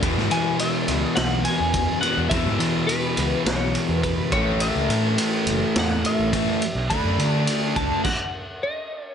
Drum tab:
CC |----------------|----------------|----------------|--------x-------|
RD |x-x-x-x-x-x-x-x-|x-x-x-x-x-x-x-x-|x-x-x-x-x-x-x-x-|x-x-x-x---------|
SD |-o------o-------|--------o-------|--------o-------|----------------|
BD |o-----------o---|o-----------o-o-|------------o---|o-----o-o-------|